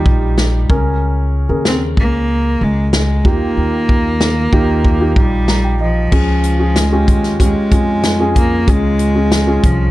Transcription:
Already playing: D#3 G3 D#4 F4 G4
0.06 A#1, kick
0.38 snare
0.69 C#2 C#3 C#4 G#4 A#4, kick
1.49 D#2 C#3 G#4 A#4
1.65 C4, snare
1.97 C#2 A#3, kick
2.61 C#2 G#3
2.93 G#3, snare
3.25 D#2 D#3 A#3 D#4 F4 G4, kick
3.57 D#2
3.89 kick
4.21 snare
4.53 D#2 D#4 F4 G4, kick
4.85 kick
5.00 D#4 F4 G4
5.16 A#1 G3, kick
5.48 A#5, snare
5.64 G5
5.81 F3 D#5
6.12 C#2 C#3 C#4 F4 G#4, kick, crash
6.44 closed hi-hat
6.59 C#4 F4 G#4
6.76 G#3, snare, closed hi-hat
6.92 C#4 F4 G4
7.08 D#2, kick, closed hi-hat
7.24 snare, closed hi-hat
7.40 G#3 C#4 F4 G4, kick, closed hi-hat
7.71 F2 C#4 F4 G#4, kick, closed hi-hat
8.03 snare, closed hi-hat
8.20 C#4 F4 G#4
8.36 A#3, kick, closed hi-hat
8.67 C#2 C#3 G#3 C#4 F4 G#4, kick, closed hi-hat
8.99 closed hi-hat
9.16 C#4 F4 G#4
9.32 snare, closed hi-hat
9.47 C#4 F4 G#4
9.63 C2 F3, kick, closed hi-hat

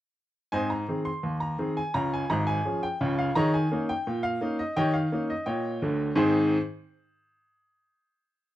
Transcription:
0.52 G#2 C4 C5 D#5 G#5
0.70 A#5
0.88 D#3 C4 G#4
1.05 C6
1.23 D#2
1.40 A#5
1.59 D#3 C4 G#4
1.77 G#5
1.94 C#2 C#3 A#5
2.14 G#5
2.30 G#1 G#2 A#5
2.47 G#5
2.65 F3 C#4 G#4
2.83 G5
3.01 C#2 C#3
3.19 F5
3.35 D#3 G#4 C#5 D#5 A#5
3.54 G#5
3.72 A#3 C#4 D#4
3.89 G5
4.07 A#2
4.23 F5
4.41 A#3 C#4 D#4
4.59 D#5
4.76 D#3 G4 C#5 D#5 G5
4.93 F5
5.12 A#3 C#4 D#4
5.30 D#5
5.46 A#2 C#5 D#5 G5
5.82 D2 D3
6.16 G#2 D#3 C4 D#4 G#4 C5 G#5

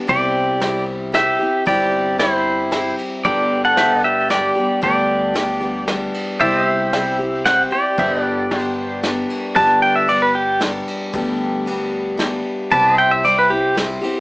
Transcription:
0.07 C2 C3 G3 C4 E4 G4 D5, kick, ride
0.61 G3 C4 E4 G4, snare, ride
1.12 G3 C4 E4 G4 E5, snare, ride
1.39 C4 E4 G4
1.66 G1 C3 G3 C4 E4 G4 D5, kick, ride
2.18 G3 C4 E4 G4 C5, snare, ride
2.71 G3 C4 E4 G4, snare, ride
2.99 ride
3.25 G1 G2 D3 G3 B3 D4 G4 D5, kick, ride
3.65 A4 F#5
3.77 G3 B3 D4 G4 C5 E5, snare, ride
3.98 B4
4.04 G4 D5 E5
4.29 G3 B3 D4 G4 D5, snare, ride
4.55 G3 B3 D4 G4
4.81 D2 G2 D3 G3 B3 D4 G4 D5, kick, ride
5.34 G3 B3 D4 G4, snare, ride
5.60 G3 B3 D4 G4
5.87 G3 B3 D4 G4, snare, ride
6.14 ride
6.39 C2 C3 G3 C4 E4 G4 C5 D5 E5, kick, ride
6.65 E5
6.92 G3 C4 E4 G4, snare, ride
7.19 C4 E4 G4
7.45 G3 C4 E4 G4 C5 F#5, snare, ride
7.71 C4 E4 G4 D5
7.98 G1 G2 D3 G3 B3 D4 G4 C5 E5, kick, ride
8.19 B4
8.24 D5
8.50 G3 B3 D4 G4, snare, ride
8.58 C5
9.03 G3 B3 D4 G4, snare, ride
9.30 ride
9.55 G1 G2 D3 G3 B3 D4 G4 B4 D5 A5, kick, ride
9.82 G5
9.96 E5
10.08 G3 B3 D4 G4 D5, ride
10.22 B4
10.35 G4
10.60 G3 B3 D4 G4, snare, ride
10.88 ride
11.13 D2 G2 D3 G3 B3 D4 G4, kick, ride
11.66 G3 B3 D4 G4, ride
12.17 G3 B3 D4 G4, snare, ride
12.71 C2 C3 G3 C4 E4 G4 B4 D5 A5, kick, ride
12.92 C5
12.98 E5 G5
13.11 E5
13.23 G3 C4 E4 G4 D5, ride
13.38 B4
13.49 C4 E4 G4
13.75 G3 C4 E4 G4, snare, ride
14.01 C4 E4 G4, ride

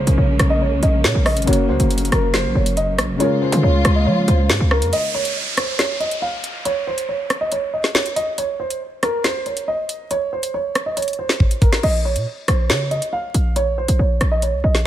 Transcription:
Already playing: C#3 F3 G#3 A#3 C#4 G#4 A#4 C5
0.07 A#1, closed hi-hat
0.18 A#1 C#5
0.39 A#1, cross-stick, closed hi-hat
0.50 D#5
0.61 C#5
0.72 C2
0.83 A#1 D#5, closed hi-hat
1.04 A#2 C#5, snare, closed hi-hat
1.15 A#1
1.25 D#5, cross-stick, open hi-hat
1.37 G#1, closed hi-hat
1.42 C#3, closed hi-hat
1.46 F#1 F#3 A#3 F#4 C#5, closed hi-hat
1.51 A#4, closed hi-hat
1.69 C#2 C5
1.80 F#1, closed hi-hat
1.91 closed hi-hat
1.98 closed hi-hat
2.05 closed hi-hat
2.12 F#1 A#4, cross-stick, closed hi-hat
2.34 C5, snare
2.45 A#1
2.55 F#1 C#5
2.66 closed hi-hat
2.77 D#5, closed hi-hat
2.98 A#1, cross-stick, closed hi-hat
3.09 F#1
3.16 C#3 G#3 F4 C#5, closed hi-hat
3.21 F4 A#4
3.42 C5
3.52 C#3, closed hi-hat
3.63 C#2 C#5
3.85 C#2, cross-stick, closed hi-hat
3.95 D#5
4.06 F3 C#5
4.28 C#2 C5, closed hi-hat
4.50 G#2, snare, closed hi-hat
4.60 C#2
4.71 A#4, cross-stick
4.82 F2, closed hi-hat
4.93 D#5, closed hi-hat, downlifter
5.14 C#5
5.25 closed hi-hat
5.57 C5, cross-stick, closed hi-hat
5.79 C#5, snare, closed hi-hat
6.00 D#5, closed hi-hat
6.11 closed hi-hat
6.22 F5
6.44 closed hi-hat
6.65 C#5, closed hi-hat
6.87 C5
6.98 closed hi-hat
7.09 C#5
7.30 cross-stick, closed hi-hat
7.41 D#5
7.52 C#5, closed hi-hat
7.73 D#5
7.84 snare
7.95 C#5, snare
8.06 closed hi-hat
8.16 D#5, closed hi-hat
8.38 C#5, closed hi-hat
8.60 C5
8.70 closed hi-hat
9.03 A#4, cross-stick, closed hi-hat
9.24 C5, snare, closed hi-hat
9.46 C#5, closed hi-hat
9.57 closed hi-hat
9.68 D#5
9.89 closed hi-hat
10.11 C#5, closed hi-hat
10.33 C5
10.43 closed hi-hat
10.54 C#5
10.75 cross-stick, closed hi-hat
10.86 D#5
10.97 C#5, closed hi-hat
11.02 closed hi-hat
11.08 closed hi-hat
11.13 closed hi-hat
11.19 C5
11.29 snare
11.40 kick
11.51 closed hi-hat
11.61 A#4, kick, closed hi-hat
11.73 snare
11.83 A#1 D#5, crash
12.05 C#5
12.16 A#2, closed hi-hat
12.48 A#1 C5, cross-stick, closed hi-hat
12.70 C#3 C#5, snare, closed hi-hat
12.91 D#5, closed hi-hat
13.02 closed hi-hat
13.13 F5
13.34 A#1, closed hi-hat
13.56 C#5, closed hi-hat
13.78 C5
13.88 A#1, closed hi-hat
13.99 A#1 C#5
14.21 A#1, cross-stick, closed hi-hat
14.31 D#5
14.42 C#5, closed hi-hat
14.53 C2
14.64 A#1 D#5
14.75 snare

